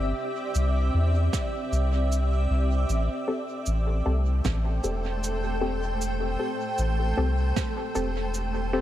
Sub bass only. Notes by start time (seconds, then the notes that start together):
Already playing: G1
0.55 C2
0.94 E2
1.72 C2
2.50 C2
2.89 A1
3.67 A1
4.06 C2
4.45 A1
4.84 E1
6.79 A1
7.18 C2
7.96 E1